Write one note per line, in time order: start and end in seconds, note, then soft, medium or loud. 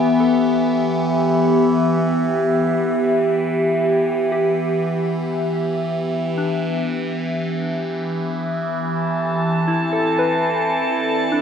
0.00 11.42 E3 medium
0.00 8.85 B3 medium
0.00 8.84 G4 medium
0.00 10.04 E5 medium
0.20 3.00 A4 medium
4.32 7.11 G4 medium
6.37 9.17 D4 medium
8.87 11.42 A5 medium
9.05 11.42 C4 medium
9.14 11.42 A4 medium
9.68 11.42 E4 medium
9.93 11.42 A4 soft
10.19 11.42 B4 soft
10.64 11.42 D5 medium
11.32 11.42 D4 soft